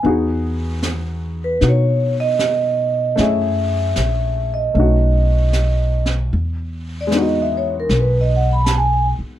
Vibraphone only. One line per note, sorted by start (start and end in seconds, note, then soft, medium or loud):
1.44 1.66 B4 medium
1.69 2.14 C#5 medium
2.20 3.23 D#5 medium
3.23 4.55 E5 medium
4.54 6.05 D#5 medium
7.01 7.12 D5 medium
7.21 7.42 D#5 medium
7.42 7.66 E5 medium
7.57 7.73 C#5 medium
7.80 7.91 A#4 medium
8.00 8.20 B4 medium
8.21 8.43 D#5 medium
8.36 8.38 F#5 medium
8.53 8.64 B5 medium
8.65 8.70 A5 medium
8.77 9.05 G#5 medium